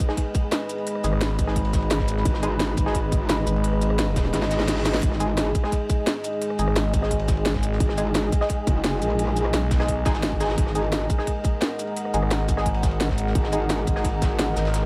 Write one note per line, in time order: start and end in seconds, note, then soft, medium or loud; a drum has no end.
0.00 14.86 G#3 medium
0.00 14.86 D#4 medium
0.00 14.86 G#4 medium
0.00 5.01 B4 medium
0.00 14.86 D#5 medium
0.00 0.17 G#5 medium
0.08 0.16 G#3 medium
0.08 0.16 D#4 medium
0.08 0.16 G#4 medium
0.08 cross-stick soft
0.08 snare medium
0.15 5.72 B5 medium
0.15 kick medium
0.15 closed hi-hat medium
0.15 ride loud
0.15 shaker soft
0.35 kick loud
0.35 closed hi-hat medium
0.35 ride medium
0.35 shaker medium
0.52 snare loud
0.52 closed hi-hat medium
0.52 ride medium
0.69 closed hi-hat medium
0.69 ride medium
0.69 shaker medium
0.78 ride soft
0.87 closed hi-hat medium
0.87 ride medium
0.95 cross-stick soft
1.04 1.89 G#1 loud
1.04 1.11 G#3 medium
1.04 1.11 D#4 medium
1.04 1.11 G#4 medium
1.04 closed hi-hat medium
1.04 ride medium
1.04 shaker medium
1.13 cross-stick medium
1.21 snare loud
1.21 closed hi-hat medium
1.21 ride medium
1.39 kick loud
1.39 closed hi-hat medium
1.39 ride medium
1.39 shaker medium
1.47 1.59 G#3 medium
1.47 1.59 D#4 medium
1.47 1.59 G#4 medium
1.47 cross-stick soft
1.47 snare medium
1.56 kick medium
1.56 closed hi-hat medium
1.56 ride medium
1.56 shaker soft
1.65 ride medium
1.73 kick loud
1.73 snare medium
1.73 closed hi-hat medium
1.73 shaker medium
1.82 ride medium
1.91 2.24 G#1 loud
1.91 snare loud
1.91 closed hi-hat medium
1.91 ride medium
1.99 kick medium
1.99 snare medium
2.08 closed hi-hat medium
2.08 ride medium
2.08 shaker medium
2.17 snare soft
2.25 2.76 G#1 loud
2.25 kick loud
2.25 closed hi-hat loud
2.25 ride medium
2.34 cross-stick soft
2.34 snare medium
2.43 2.50 G#3 medium
2.43 2.50 D#4 medium
2.43 2.50 G#4 medium
2.43 closed hi-hat medium
2.43 ride medium
2.43 shaker medium
2.59 snare loud
2.59 closed hi-hat loud
2.59 ride medium
2.77 3.28 G#1 loud
2.77 kick loud
2.77 closed hi-hat medium
2.77 ride medium
2.77 shaker medium
2.86 2.93 G#3 medium
2.86 2.93 D#4 medium
2.86 2.93 G#4 medium
2.86 cross-stick soft
2.86 snare medium
2.94 kick medium
2.94 closed hi-hat loud
2.94 ride medium
2.94 shaker soft
3.12 kick loud
3.12 closed hi-hat medium
3.12 ride medium
3.12 shaker medium
3.29 3.45 G#1 loud
3.29 snare loud
3.29 closed hi-hat loud
3.29 ride medium
3.47 4.32 G#1 loud
3.47 closed hi-hat medium
3.47 ride medium
3.47 shaker medium
3.56 ride soft
3.64 closed hi-hat loud
3.64 ride medium
3.73 cross-stick soft
3.81 closed hi-hat medium
3.81 ride medium
3.81 shaker medium
3.90 cross-stick medium
3.98 snare loud
3.98 closed hi-hat loud
3.98 ride medium
4.16 kick loud
4.16 snare loud
4.16 closed hi-hat medium
4.16 ride medium
4.16 shaker medium
4.25 cross-stick soft
4.25 snare soft
4.25 ride soft
4.33 5.01 G#1 loud
4.33 snare medium
4.33 snare loud
4.33 closed hi-hat loud
4.33 ride medium
4.33 reverse cymbal medium
4.33 shaker soft
4.42 snare loud
4.42 snare medium
4.42 ride medium
4.51 snare loud
4.51 closed hi-hat medium
4.51 ride medium
4.51 shaker medium
4.60 snare medium
4.60 snare loud
4.60 ride medium
4.60 shaker soft
4.68 snare medium
4.68 closed hi-hat loud
4.68 ride medium
4.76 snare loud
4.76 ride medium
4.85 snare loud
4.85 closed hi-hat medium
4.85 ride medium
4.85 shaker medium
4.94 snare loud
4.94 snare medium
4.94 ride medium
5.03 5.53 G#1 loud
5.03 10.56 G#4 medium
5.03 kick loud
5.03 closed hi-hat loud
5.03 ride loud
5.12 cross-stick soft
5.12 snare medium
5.20 5.27 G#3 medium
5.20 5.27 D#4 medium
5.20 5.27 G#4 medium
5.20 closed hi-hat medium
5.20 ride medium
5.20 shaker medium
5.37 snare loud
5.37 closed hi-hat loud
5.37 ride medium
5.55 kick loud
5.55 closed hi-hat medium
5.55 ride medium
5.55 shaker medium
5.64 5.71 G#3 medium
5.64 5.71 D#4 medium
5.64 5.71 G#4 medium
5.64 cross-stick soft
5.64 snare medium
5.70 11.27 G#5 medium
5.70 kick medium
5.70 closed hi-hat loud
5.70 ride loud
5.70 shaker soft
5.90 kick loud
5.90 closed hi-hat medium
5.90 ride medium
5.90 shaker medium
6.07 snare loud
6.07 closed hi-hat loud
6.07 ride medium
6.24 closed hi-hat medium
6.24 ride medium
6.24 shaker medium
6.33 ride soft
6.41 closed hi-hat loud
6.41 ride medium
6.50 cross-stick soft
6.59 7.44 G#1 loud
6.59 6.66 G#3 medium
6.59 6.66 D#4 medium
6.59 6.66 G#4 medium
6.59 closed hi-hat medium
6.59 ride medium
6.59 shaker medium
6.68 cross-stick medium
6.76 snare loud
6.76 closed hi-hat medium
6.76 ride loud
6.93 kick loud
6.93 closed hi-hat medium
6.93 ride medium
6.93 shaker medium
7.02 7.14 G#3 medium
7.02 7.14 D#4 medium
7.02 7.14 G#4 medium
7.02 cross-stick soft
7.02 snare medium
7.11 kick medium
7.11 closed hi-hat loud
7.11 ride medium
7.11 shaker soft
7.19 ride medium
7.27 kick loud
7.27 snare soft
7.27 closed hi-hat medium
7.27 shaker medium
7.37 ride medium
7.45 7.79 G#1 loud
7.45 snare loud
7.45 closed hi-hat medium
7.45 ride medium
7.54 kick medium
7.54 snare medium
7.63 closed hi-hat medium
7.63 ride medium
7.63 shaker medium
7.72 snare soft
7.80 8.31 G#1 loud
7.80 kick loud
7.80 closed hi-hat medium
7.80 ride medium
7.89 cross-stick soft
7.89 snare medium
7.98 8.05 G#3 medium
7.98 8.05 D#4 medium
7.98 8.05 G#4 medium
7.98 closed hi-hat medium
7.98 ride medium
7.98 shaker medium
8.15 snare loud
8.15 closed hi-hat medium
8.15 ride loud
8.32 kick loud
8.32 closed hi-hat medium
8.32 ride medium
8.32 shaker medium
8.41 8.48 G#3 medium
8.41 8.48 D#4 medium
8.41 8.48 G#4 medium
8.41 cross-stick soft
8.41 snare medium
8.49 kick medium
8.49 closed hi-hat medium
8.49 ride medium
8.49 shaker soft
8.67 9.00 F#1 loud
8.67 kick loud
8.67 closed hi-hat medium
8.67 ride medium
8.67 shaker medium
8.84 snare loud
8.84 closed hi-hat medium
8.84 ride loud
9.02 9.52 A#1 loud
9.02 closed hi-hat medium
9.02 ride medium
9.02 shaker medium
9.10 ride soft
9.19 closed hi-hat medium
9.19 ride medium
9.28 cross-stick soft
9.36 closed hi-hat medium
9.36 ride medium
9.36 shaker medium
9.45 cross-stick medium
9.54 10.04 B1 medium
9.54 snare loud
9.54 closed hi-hat medium
9.54 ride medium
9.71 kick loud
9.71 snare loud
9.71 closed hi-hat medium
9.71 ride medium
9.71 shaker medium
9.80 9.91 G#3 medium
9.80 9.91 D#4 medium
9.80 9.91 G#4 medium
9.80 cross-stick soft
9.80 snare loud
9.80 ride medium
9.88 kick medium
9.88 closed hi-hat medium
9.88 shaker soft
10.05 10.56 G#1 loud
10.05 10.13 G#3 loud
10.05 10.13 D#4 medium
10.05 10.13 G#4 loud
10.05 kick loud
10.05 snare loud
10.05 closed hi-hat medium
10.05 ride medium
10.05 shaker medium
10.14 snare loud
10.14 ride medium
10.14 shaker soft
10.23 snare loud
10.23 closed hi-hat medium
10.23 ride medium
10.32 kick medium
10.40 10.73 G#3 medium
10.40 10.73 D#4 medium
10.40 10.73 G#4 loud
10.40 snare medium
10.40 closed hi-hat medium
10.40 ride medium
10.40 shaker medium
10.44 snare medium
10.44 ride medium
10.49 snare loud
10.49 ride medium
10.58 11.08 G#1 loud
10.58 14.86 A#4 medium
10.58 kick loud
10.58 closed hi-hat medium
10.58 ride medium
10.66 cross-stick soft
10.66 snare medium
10.75 10.82 G#3 medium
10.75 10.82 D#4 medium
10.75 10.82 G#4 medium
10.75 closed hi-hat medium
10.75 ride medium
10.75 shaker medium
10.92 snare loud
10.92 closed hi-hat medium
10.92 ride medium
11.09 kick loud
11.09 closed hi-hat medium
11.09 ride medium
11.09 shaker medium
11.18 11.26 G#3 medium
11.18 11.26 D#4 medium
11.18 11.26 G#4 medium
11.18 cross-stick soft
11.18 snare medium
11.25 14.86 F#5 medium
11.25 kick medium
11.25 closed hi-hat medium
11.25 ride medium
11.25 shaker soft
11.44 kick loud
11.44 closed hi-hat medium
11.44 ride medium
11.44 shaker medium
11.61 snare loud
11.61 closed hi-hat medium
11.61 ride medium
11.79 closed hi-hat medium
11.79 ride medium
11.79 shaker medium
11.87 ride soft
11.97 closed hi-hat loud
11.97 ride medium
12.05 cross-stick soft
12.14 12.99 G#1 loud
12.14 12.21 G#3 medium
12.14 12.21 D#4 medium
12.14 12.21 G#4 medium
12.14 closed hi-hat medium
12.14 ride medium
12.14 shaker medium
12.23 cross-stick medium
12.30 snare loud
12.30 closed hi-hat medium
12.30 ride medium
12.49 kick loud
12.49 closed hi-hat medium
12.49 ride medium
12.49 shaker medium
12.57 12.69 G#3 medium
12.57 12.69 D#4 medium
12.57 12.69 G#4 medium
12.57 cross-stick soft
12.57 snare medium
12.66 kick medium
12.66 closed hi-hat loud
12.66 ride medium
12.66 shaker soft
12.74 ride medium
12.83 kick loud
12.83 snare medium
12.83 closed hi-hat medium
12.83 shaker medium
12.91 ride medium
13.01 13.34 G#1 loud
13.01 snare loud
13.01 closed hi-hat loud
13.01 ride medium
13.09 kick medium
13.09 snare soft
13.17 closed hi-hat medium
13.17 ride medium
13.17 shaker medium
13.27 snare soft
13.35 13.86 G#1 medium
13.35 kick loud
13.35 closed hi-hat loud
13.35 ride medium
13.44 cross-stick soft
13.44 snare medium
13.52 13.60 G#3 medium
13.52 13.60 D#4 medium
13.52 13.60 G#4 medium
13.52 closed hi-hat medium
13.52 ride medium
13.52 shaker medium
13.70 snare loud
13.70 closed hi-hat medium
13.70 ride medium
13.87 14.38 G#1 loud
13.87 kick loud
13.87 closed hi-hat medium
13.87 ride medium
13.87 shaker medium
13.95 14.03 G#3 medium
13.95 14.03 D#4 medium
13.95 14.03 G#4 medium
13.95 cross-stick soft
13.95 snare medium
14.05 kick medium
14.05 closed hi-hat loud
14.05 ride loud
14.05 shaker soft
14.22 kick loud
14.22 snare loud
14.22 closed hi-hat medium
14.22 ride medium
14.22 shaker medium
14.39 14.55 G#1 loud
14.39 snare loud
14.39 closed hi-hat loud
14.39 ride medium
14.56 14.86 G#1 loud
14.56 snare loud
14.56 closed hi-hat medium
14.56 ride medium
14.56 shaker medium
14.65 snare loud
14.65 ride medium
14.74 snare loud
14.74 closed hi-hat loud
14.74 ride medium
14.83 cross-stick soft